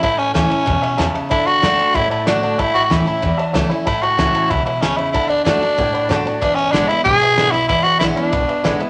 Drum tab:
RD |xxxxxxxx|xxxxxxxx|xxxxxxxx|xxxxxxxx|
SD |--o---o-|--o---o-|--o---o-|--o---o-|
BD |o---o---|o---o---|o---o---|o---o---|

RD |xxxxxxxx|xxxxxxxx|xxxxxxxx|
SD |--o---o-|--o---o-|--o---o-|
BD |o---o---|o---o---|o---o---|